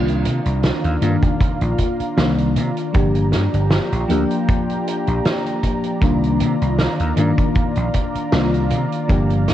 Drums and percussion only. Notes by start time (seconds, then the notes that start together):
0.08 closed hi-hat
0.25 closed hi-hat
0.45 closed hi-hat
0.63 snare, closed hi-hat
0.84 closed hi-hat
1.02 closed hi-hat
1.23 kick, closed hi-hat
1.41 kick, closed hi-hat
1.61 closed hi-hat
1.78 kick, closed hi-hat
2.00 closed hi-hat
2.17 snare, closed hi-hat
2.38 closed hi-hat
2.56 closed hi-hat
2.77 closed hi-hat
2.94 kick, closed hi-hat
3.15 closed hi-hat
3.32 snare, closed hi-hat
3.54 closed hi-hat
3.71 snare, closed hi-hat
3.92 closed hi-hat
4.10 closed hi-hat
4.30 closed hi-hat
4.49 kick, closed hi-hat
4.70 closed hi-hat
4.88 closed hi-hat
5.07 closed hi-hat
5.25 snare, closed hi-hat
5.46 closed hi-hat
5.63 kick, closed hi-hat
5.84 closed hi-hat
6.02 kick, closed hi-hat
6.23 closed hi-hat
6.40 closed hi-hat
6.62 closed hi-hat
6.79 snare, closed hi-hat
7.00 closed hi-hat
7.17 closed hi-hat
7.38 kick, closed hi-hat
7.55 kick, closed hi-hat
7.76 closed hi-hat
7.94 kick, closed hi-hat
8.15 closed hi-hat
8.32 snare, closed hi-hat
8.54 closed hi-hat
8.70 closed hi-hat
8.92 closed hi-hat
9.10 kick, closed hi-hat
9.30 closed hi-hat
9.48 snare, closed hi-hat